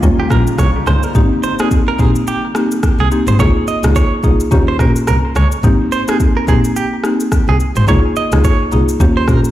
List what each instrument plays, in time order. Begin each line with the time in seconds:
Already playing: ambient pad C#3
0.02 double bass D#2, marimba G3 A#3 C#4 F4, ambient pad G3 D#4, kick, shaker
0.20 clean electric guitar G4
0.30 double bass A#1, marimba G3 A#3 C#4 F4, clean electric guitar A#4, kick, cross-stick, shaker
0.47 shaker
0.58 double bass C2, clean electric guitar C#5, kick, cross-stick, shaker
0.87 double bass C#2, clean electric guitar C5, cross-stick, shaker
1.03 clean electric guitar A#4, shaker
1.15 double bass G#1, marimba A#3 C4 D#4 G4, kick, shaker
1.43 clean electric guitar C5, shaker
1.59 marimba A#3 C4 D#4 G4, clean electric guitar G#4, cross-stick, shaker
1.71 kick, shaker
1.88 clean electric guitar A#4
1.99 double bass A#1, marimba A#3 C4 D#4 G4, clean electric guitar G#4, kick, shaker
2.16 shaker
2.27 clean electric guitar G4, shaker
2.55 marimba A#3 C4 D#4 G4, cross-stick, shaker
2.71 shaker
2.83 kick, cross-stick, shaker
2.99 double bass C2, clean electric guitar G#4
3.11 marimba A#3 C4 D#4 G4, shaker
3.27 double bass G#1, clean electric guitar C5, shaker
3.39 double bass C#2, marimba A#3 D#4 F4 G#4, clean electric guitar C#5, kick, shaker
3.68 clean electric guitar D#5, shaker
3.83 double bass C#2, marimba A#3 D#4 F4 G#4, cross-stick, shaker
3.96 clean electric guitar C#5, kick, shaker
4.24 double bass C2, marimba A#3 D#4 F4 G#4, kick, shaker
4.40 shaker
4.51 double bass D#2, marimba A#3 C#4 F4 G4, kick, shaker
4.68 clean electric guitar C5
4.79 double bass A#1, marimba A#3 C#4 F4 G4, clean electric guitar A#4, kick, cross-stick, shaker
4.96 shaker
5.07 double bass C2, clean electric guitar A#4, cross-stick, shaker
5.36 double bass C#2, clean electric guitar C#5, cross-stick, shaker
5.52 shaker
5.64 double bass G#1, marimba A#3 C4 D#4 G4, kick, shaker
5.92 clean electric guitar C5, shaker
6.08 marimba A#3 C4 D#4 G4, clean electric guitar G#4, cross-stick, shaker
6.20 kick, shaker
6.37 clean electric guitar A#4
6.48 double bass A#1, marimba A#3 C4 D#4 G4, clean electric guitar G#4, kick, shaker
6.65 shaker
6.76 clean electric guitar G4, shaker
7.04 marimba A#3 C4 D#4 G4, cross-stick, shaker
7.20 shaker
7.32 kick, cross-stick, shaker
7.48 double bass C2, clean electric guitar G#4
7.60 shaker
7.76 double bass G#1, clean electric guitar C5, shaker
7.88 double bass C#2, marimba A#3 D#4 F4 G#4, clean electric guitar C#5, kick, shaker
8.16 clean electric guitar D#5, shaker
8.32 double bass C#2, marimba A#3 D#4 F4 G#4, cross-stick, shaker
8.44 clean electric guitar C#5, kick, shaker
8.72 double bass C2, marimba A#3 D#4 F4 G#4, shaker
8.89 shaker
9.00 double bass D#2, marimba A#3 C#4 F4 G4, kick, shaker
9.17 clean electric guitar C5
9.28 double bass A#1, marimba A#3 C#4 F4 G4, clean electric guitar A#4, kick, cross-stick, shaker
9.45 shaker